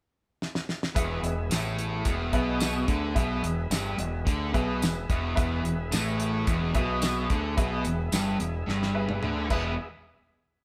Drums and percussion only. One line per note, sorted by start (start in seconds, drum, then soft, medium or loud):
0.42 snare medium
0.55 snare medium
0.69 snare medium
0.83 snare medium
0.96 kick loud
0.96 closed hi-hat loud
1.24 closed hi-hat medium
1.51 snare loud
1.51 closed hi-hat loud
1.51 tambourine loud
1.79 closed hi-hat medium
2.05 kick loud
2.05 closed hi-hat medium
2.33 kick loud
2.33 closed hi-hat medium
2.60 snare loud
2.60 closed hi-hat loud
2.60 tambourine loud
2.88 kick loud
2.88 closed hi-hat medium
3.16 kick loud
3.16 closed hi-hat loud
3.44 closed hi-hat medium
3.71 snare loud
3.71 closed hi-hat loud
3.71 tambourine loud
3.99 closed hi-hat medium
4.27 kick loud
4.27 closed hi-hat medium
4.54 kick medium
4.54 closed hi-hat medium
4.82 snare loud
4.82 closed hi-hat medium
4.82 tambourine loud
5.10 kick loud
5.10 closed hi-hat medium
5.37 kick loud
5.37 closed hi-hat loud
5.65 closed hi-hat medium
5.92 snare loud
5.92 closed hi-hat loud
5.92 tambourine loud
6.20 closed hi-hat medium
6.47 kick loud
6.47 closed hi-hat loud
6.75 kick loud
6.75 closed hi-hat medium
7.02 snare loud
7.02 closed hi-hat loud
7.02 tambourine loud
7.30 kick medium
7.30 closed hi-hat medium
7.58 kick loud
7.58 closed hi-hat loud
7.85 closed hi-hat medium
8.12 snare loud
8.12 closed hi-hat loud
8.12 tambourine loud
8.40 closed hi-hat medium
8.69 snare medium
8.83 snare medium
9.09 high tom medium
9.23 mid tom medium
9.50 kick medium
9.50 crash medium